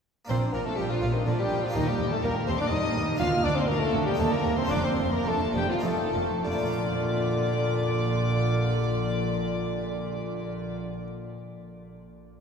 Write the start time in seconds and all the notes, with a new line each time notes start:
0.25 A#3 D4 A#4 C6
0.29 A#1 A#2 C4 F4 C5
0.42 D4
0.52 A#1 A#2 A#3 F4 A#4 A#5
0.65 A3 D4 A4 A5
0.77 A#1 A#2 G3 F4 G4 G5
0.89 F3 D4 F4 F5
1.02 A#1 A#2 F4
1.13 D#3 D4 D#4 D#5
1.24 A#1 A#2 D3 D4 F4 D5
1.38 G3 D4 G4
1.42 G5
1.49 A#1 A#2 F4
1.61 F3 D4 F4 F5
1.69 A#3 G4 A#4
1.73 D#2 D#3 G3 D#4 D#5
1.86 G3 A#3 G4 G5
1.98 D#2 G3
2.10 A3 A#3 A4 A5
2.21 D#2 G3 A#3 A#4 A#5
2.36 A#3
2.46 D#2 G3 C4 C5 C6
2.58 A#3 D4 D5 D6
2.70 D#2 G3 D#4 D#5 D#6
2.84 A#3
2.95 D#2 G3
3.09 A#3
3.15 D2 A#3 F4 A#4 F5
3.19 D2 D4 F4 F6
3.33 A#3
3.43 D2 D4 D5 D6
3.55 A#3 C4 C5 C6
3.67 D2 A#3 D4 A#4 A#5
3.80 A3 A#3 A4 A5
3.93 D2 D4
4.06 G3 A#3 G4 G5
4.14 A#3 D#4 G4
4.18 D#2 A3 A#3 A4 A5
4.31 G3 A#3 A#4 A#5
4.44 D#2 A#3
4.58 G3 C4 C5 C6
4.65 A#3 D4 F4
4.69 F1 F2 D4 D5 D6
4.84 A#3 C4 C5 C6
4.97 F1 F2 D4
5.12 A#3 A#4 A#5
5.25 F1 F2 A3 D4 A4 A5
5.41 A#3
5.53 F1 F2 G3 D4 G4 G5
5.69 F3 A#3 F4 F5
5.79 C4 D#4 F4
5.83 F1 F2 A3 F4 A4 A5
5.98 D#4
6.13 F1 F2 F4
6.29 D#4
6.44 A#1 A#2 D3 F4 D5 D6
6.52 A#3
6.59 D4
6.66 F4
6.73 D5